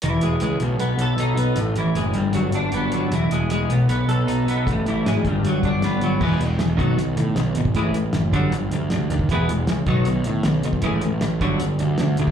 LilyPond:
<<
  \new Staff \with { instrumentName = "Clean electric guitar" } { \clef bass \time 4/4 \key b \mixolydian \tempo 4 = 156 e8 gis8 gis8 b,8 b8 a'8 dis'8 b8 | a,8 e8 gis8 g,8 fis8 d'8 b8 fis8 | e8 gis8 gis8 b,8 b8 a'8 dis'8 b8 | a,8 e8 gis8 g,8 fis8 d'8 b8 fis8 |
<e gis b>8 <e gis>8 <e gis>8 <b, dis fis>8 <b, dis>8 <b, dis>8 <b, dis>8 <b, dis>8 | <a, e gis>8 <a, e>8 <a, e>8 <g, d fis>8 <g, d>8 <g, d>8 <g, d>8 <g, d>8 | <e gis b>8 <e gis>8 <e gis>8 <b, dis fis>8 <b, dis>8 <b, dis>8 <b, dis>8 <b, dis>8 | <a, e gis>8 <a, e>8 <a, e>8 <g, d fis>8 <g, d>8 <g, d>8 <g, d>8 <g, d>8 | }
  \new Staff \with { instrumentName = "Picked electric bass" } { \clef bass \time 4/4 \key b \mixolydian e,,8 e,,8 cis,8 b,,8 b,,8 b,,8 b,,8 b,,8 | a,,8 a,,8 fis,,8 g,,8 g,,8 g,,8 g,,8 g,,8 | e,,8 e,,8 e,,8 b,,8 b,,8 b,,8 b,,8 b,,8 | a,,8 a,,8 gis,,8 g,,8 g,,8 g,,8 g,,8 g,,8 |
e,,8 e,,8 e,,8 b,,8 b,,8 a,8 b,,8 gis,,8 | a,,8 a,,8 fis,,8 g,,8 g,,8 d,8 d,8 dis,8 | e,,8 e,,8 cis,8 b,,8 b,,8 a,8 b,,8 b,,8 | a,,8 a,,8 a,,8 g,,8 g,,8 d,8 d,8 d,8 | }
  \new DrumStaff \with { instrumentName = "Drums" } \drummode { \time 4/4 hh8 hh8 hh8 hh8 hh8 hh8 hh8 hh8 | hh8 hh8 hh8 hh8 hh8 hh8 hh8 hh8 | hh8 hh8 hh8 hh8 hh8 hh8 hh8 hh8 | <hh bd>8 hh8 <hh sn>8 <hh bd>8 hh8 <hh bd>8 <hh sn>8 hh8 |
<cymc bd>8 hh8 <hh sn>8 <hh bd>8 hh8 hh8 <hh sn>8 hh16 bd16 | <hh bd>8 hh8 <hh sn>8 <hh bd>8 hh8 hh8 <hh sn>8 hh16 bd16 | <hh bd>8 hh8 <hh sn>8 <hh bd>8 hh8 hh8 <hh sn>8 hh16 bd16 | <hh bd>8 hh8 <hh sn>8 <hh bd>8 hh8 hh8 <hh sn>8 hh16 bd16 | }
>>